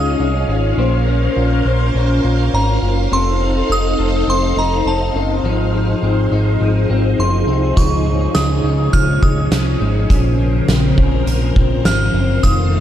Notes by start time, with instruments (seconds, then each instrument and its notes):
Already playing: analog synth bass C#2, clean electric guitar G#3 D#4 F4 C#5, string machine C#4 G#4 D#5 F5, synth bell D#6
0.19 analog synth bass C2, clean electric guitar D#4
0.48 analog synth bass G#1, clean electric guitar F4
0.77 analog synth bass A#1, clean electric guitar A#3 C5, string machine A#4 C5
1.07 clean electric guitar C#4
1.37 analog synth bass A#1, clean electric guitar F4
1.65 analog synth bass A#1, clean electric guitar C5
1.95 analog synth bass A#1, clean electric guitar C#4
2.24 analog synth bass A#1, clean electric guitar F4
2.53 analog synth bass G#1, clean electric guitar C#4, synth bell A#5
2.82 analog synth bass F#1, clean electric guitar F4
3.11 analog synth bass F1, clean electric guitar C4 A4, string machine D#4 A4 C5, synth bell C6
3.41 clean electric guitar C4
3.69 analog synth bass F1, clean electric guitar D#4, synth bell D#6
3.99 analog synth bass F1, clean electric guitar A4
4.28 analog synth bass F1, clean electric guitar C4, synth bell C6
4.56 analog synth bass F1, clean electric guitar D#4, synth bell A#5
4.85 analog synth bass F1, clean electric guitar C4, synth bell A5
5.14 analog synth bass F#1, clean electric guitar D#4
5.44 analog synth bass G#1, clean electric guitar F3 D#4, string machine D#4 G#4 C5
5.74 clean electric guitar F3
6.02 analog synth bass G#1, clean electric guitar C4
6.32 analog synth bass G#1, clean electric guitar D#4
6.61 analog synth bass G#1, clean electric guitar F3
6.90 analog synth bass G#1, clean electric guitar C4
7.19 analog synth bass F#1, clean electric guitar F3, synth bell C6
7.47 analog synth bass C2, clean electric guitar C4
7.77 analog synth bass C#2, clean electric guitar F3 D#4, string machine C#5, synth bell C#6, kick, closed hi-hat
8.06 clean electric guitar F3
8.35 analog synth bass C#2, clean electric guitar G#3, synth bell D#6, snare, closed hi-hat
8.63 analog synth bass C#2, clean electric guitar D#4
8.93 analog synth bass C#2, clean electric guitar F3, synth bell F6, kick, closed hi-hat
9.23 analog synth bass C#2, clean electric guitar G#3, synth bell D#6, kick
9.51 analog synth bass C2, clean electric guitar F3, snare, closed hi-hat
9.81 analog synth bass G#1, clean electric guitar G#3
10.10 analog synth bass A#1, string machine C#3 A#4 C5, clean electric guitar F3 C#4, kick, closed hi-hat
10.39 clean electric guitar F3
10.68 analog synth bass A#1, clean electric guitar C4, snare, closed hi-hat
10.97 analog synth bass A#1, clean electric guitar C#4, kick
11.26 analog synth bass A#1, clean electric guitar F3, closed hi-hat
11.56 analog synth bass A#1, clean electric guitar C4, kick
11.84 analog synth bass G#1, clean electric guitar F3, synth bell F6, snare, closed hi-hat
12.14 analog synth bass F#1, clean electric guitar C4
12.43 analog synth bass F1, clean electric guitar D#3 F4, string machine D#4 A4 F5, synth bell D#6, kick, closed hi-hat
12.72 clean electric guitar A3